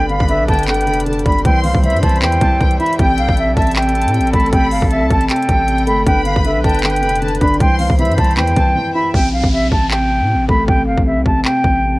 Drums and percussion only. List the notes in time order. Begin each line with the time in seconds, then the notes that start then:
0.10 closed hi-hat
0.21 kick
0.29 closed hi-hat
0.49 kick, closed hi-hat
0.54 closed hi-hat
0.59 closed hi-hat
0.64 closed hi-hat
0.68 clap, closed hi-hat
0.75 closed hi-hat
0.81 closed hi-hat
0.87 closed hi-hat
0.94 closed hi-hat
1.00 closed hi-hat
1.07 closed hi-hat
1.13 closed hi-hat
1.19 closed hi-hat
1.26 kick, closed hi-hat
1.32 closed hi-hat
1.39 closed hi-hat
1.45 kick, closed hi-hat
1.64 open hi-hat
1.74 kick
1.83 closed hi-hat
1.90 closed hi-hat
1.96 closed hi-hat
2.03 kick, closed hi-hat
2.09 closed hi-hat
2.16 closed hi-hat
2.22 clap, closed hi-hat
2.32 closed hi-hat
2.41 kick, closed hi-hat
2.60 kick, closed hi-hat
2.71 closed hi-hat
2.80 closed hi-hat
2.86 closed hi-hat
2.92 closed hi-hat
2.99 kick, closed hi-hat
3.17 closed hi-hat
3.28 kick
3.37 closed hi-hat
3.56 kick, closed hi-hat
3.62 closed hi-hat
3.67 closed hi-hat
3.71 closed hi-hat
3.76 clap, closed hi-hat
3.82 closed hi-hat
3.89 closed hi-hat
3.95 closed hi-hat
4.01 closed hi-hat
4.08 closed hi-hat
4.14 closed hi-hat
4.21 closed hi-hat
4.27 closed hi-hat
4.33 kick, closed hi-hat
4.40 closed hi-hat
4.46 closed hi-hat
4.53 kick, closed hi-hat
4.71 open hi-hat
4.82 kick
4.90 closed hi-hat
5.10 kick, closed hi-hat
5.21 closed hi-hat
5.30 clap, closed hi-hat
5.36 closed hi-hat
5.42 closed hi-hat
5.49 kick, closed hi-hat
5.68 closed hi-hat
5.78 closed hi-hat
5.87 closed hi-hat
6.06 kick, closed hi-hat
6.25 closed hi-hat
6.36 kick
6.44 closed hi-hat
6.64 kick, closed hi-hat
6.69 closed hi-hat
6.74 closed hi-hat
6.79 closed hi-hat
6.83 clap, closed hi-hat
6.90 closed hi-hat
6.96 closed hi-hat
7.03 closed hi-hat
7.09 closed hi-hat
7.15 closed hi-hat
7.22 closed hi-hat
7.28 closed hi-hat
7.35 closed hi-hat
7.41 kick, closed hi-hat
7.47 closed hi-hat
7.54 closed hi-hat
7.60 kick, closed hi-hat
7.79 open hi-hat
7.90 kick
7.99 closed hi-hat
8.05 closed hi-hat
8.12 closed hi-hat
8.18 kick, closed hi-hat
8.24 closed hi-hat
8.31 closed hi-hat
8.37 clap, closed hi-hat
8.47 closed hi-hat
8.56 kick, closed hi-hat
9.14 kick
9.44 kick
9.72 kick
9.91 clap
10.49 kick
10.68 kick
10.97 kick
11.26 kick
11.45 clap
11.64 kick